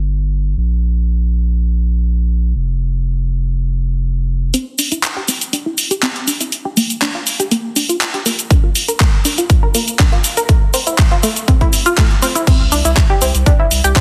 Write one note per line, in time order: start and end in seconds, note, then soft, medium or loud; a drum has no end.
0.00 0.55 G1 medium
0.57 2.53 A#1 medium
2.55 4.51 F1 medium
4.54 4.58 C4 medium
4.54 closed hi-hat medium
4.54 cabasa soft
4.79 4.83 D4 medium
4.79 open hi-hat loud
4.79 cabasa medium
4.92 4.98 E4 medium
4.92 closed hi-hat medium
4.92 cabasa soft
5.03 clap loud
5.03 closed hi-hat medium
5.03 cabasa soft
5.17 5.21 G4 loud
5.28 5.33 C4 medium
5.28 open hi-hat loud
5.28 cabasa medium
5.41 closed hi-hat medium
5.41 cabasa soft
5.53 5.58 D4 medium
5.53 closed hi-hat medium
5.53 cabasa soft
5.66 5.72 E4 medium
5.78 open hi-hat loud
5.78 cabasa medium
5.91 5.95 G4 loud
5.91 closed hi-hat medium
5.91 cabasa soft
6.03 6.07 C4 medium
6.03 clap loud
6.03 closed hi-hat medium
6.03 cabasa soft
6.16 closed hi-hat soft
6.27 6.32 D4 medium
6.27 open hi-hat loud
6.27 cabasa medium
6.41 6.47 E4 medium
6.41 closed hi-hat medium
6.41 cabasa soft
6.52 closed hi-hat medium
6.52 cabasa soft
6.65 6.69 G4 loud
6.77 6.82 A#3 medium
6.77 open hi-hat loud
6.77 cabasa medium
6.90 closed hi-hat soft
6.90 cabasa soft
7.02 7.06 D4 medium
7.02 clap loud
7.02 closed hi-hat medium
7.02 cabasa soft
7.15 7.21 F4 medium
7.27 open hi-hat loud
7.27 cabasa medium
7.40 7.44 G4 loud
7.40 closed hi-hat medium
7.40 cabasa soft
7.51 7.56 A#3 medium
7.51 closed hi-hat medium
7.51 cabasa soft
7.76 7.81 D4 medium
7.76 open hi-hat loud
7.76 cabasa medium
7.89 7.95 F4 medium
7.89 closed hi-hat medium
7.89 cabasa soft
8.01 clap loud
8.01 closed hi-hat medium
8.01 cabasa soft
8.14 8.18 G4 loud
8.14 closed hi-hat soft
8.26 8.30 A#3 medium
8.26 open hi-hat loud
8.26 cabasa medium
8.39 closed hi-hat medium
8.39 cabasa soft
8.51 8.55 D4 medium
8.51 kick loud
8.51 closed hi-hat medium
8.51 cabasa soft
8.64 8.70 F4 medium
8.75 open hi-hat loud
8.75 cabasa medium
8.88 8.93 A#4 loud
8.88 closed hi-hat medium
8.88 cabasa soft
9.00 9.05 A#3 medium
9.00 kick loud
9.00 clap loud
9.00 closed hi-hat medium
9.00 cabasa soft
9.25 9.30 D4 medium
9.25 open hi-hat loud
9.25 cabasa medium
9.38 9.44 F4 medium
9.38 closed hi-hat medium
9.38 cabasa soft
9.50 kick loud
9.50 closed hi-hat medium
9.50 cabasa soft
9.63 9.67 A#4 loud
9.75 9.79 A#3 medium
9.75 open hi-hat loud
9.75 cabasa medium
9.88 closed hi-hat medium
9.88 cabasa soft
9.99 10.04 D4 medium
9.99 kick loud
9.99 clap loud
9.99 closed hi-hat medium
9.99 cabasa soft
10.12 10.19 F4 medium
10.12 closed hi-hat soft
10.24 open hi-hat loud
10.24 cabasa medium
10.37 10.41 A#4 loud
10.37 closed hi-hat medium
10.37 cabasa soft
10.49 10.54 A3 medium
10.49 kick loud
10.49 closed hi-hat medium
10.49 cabasa soft
10.74 10.78 C4 medium
10.74 open hi-hat loud
10.74 cabasa medium
10.87 10.93 E4 medium
10.87 closed hi-hat soft
10.87 cabasa soft
10.98 kick loud
10.98 clap loud
10.98 closed hi-hat medium
10.98 cabasa soft
11.12 11.16 F4 loud
11.12 closed hi-hat soft
11.23 11.28 A3 medium
11.23 open hi-hat loud
11.23 cabasa medium
11.36 closed hi-hat medium
11.36 cabasa soft
11.48 11.53 C4 medium
11.48 kick loud
11.48 closed hi-hat medium
11.48 cabasa soft
11.61 11.67 E4 medium
11.61 kick medium
11.61 closed hi-hat soft
11.73 open hi-hat loud
11.73 cabasa medium
11.86 11.90 F4 loud
11.86 closed hi-hat soft
11.86 cabasa soft
11.98 12.02 A3 medium
11.98 kick loud
11.98 clap loud
11.98 closed hi-hat medium
11.98 cabasa soft
12.11 closed hi-hat soft
12.22 12.27 C4 medium
12.22 open hi-hat loud
12.22 cabasa medium
12.35 12.42 E4 medium
12.35 closed hi-hat medium
12.35 cabasa soft
12.47 12.52 C4 medium
12.47 kick loud
12.47 closed hi-hat medium
12.47 crash loud
12.47 cabasa soft
12.60 12.69 C2 medium
12.72 12.81 C2 loud
12.72 12.77 D4 medium
12.72 open hi-hat loud
12.72 cabasa medium
12.85 12.93 C2 medium
12.85 12.91 E4 medium
12.85 closed hi-hat medium
12.85 cabasa soft
12.97 kick loud
12.97 clap loud
12.97 closed hi-hat medium
12.97 cabasa soft
13.10 13.14 G4 loud
13.22 13.31 C2 medium
13.22 13.26 C4 medium
13.22 open hi-hat loud
13.22 cabasa medium
13.35 13.43 C2 medium
13.35 closed hi-hat medium
13.35 cabasa soft
13.46 13.51 D4 medium
13.46 kick loud
13.46 closed hi-hat medium
13.46 cabasa soft
13.60 13.66 E4 medium
13.71 13.80 C2 loud
13.71 open hi-hat loud
13.71 cabasa medium
13.84 13.93 C2 medium
13.84 13.88 G4 loud
13.84 closed hi-hat medium
13.84 cabasa soft
13.96 14.01 C4 medium
13.96 kick loud
13.96 clap loud
13.96 closed hi-hat medium
13.96 cabasa soft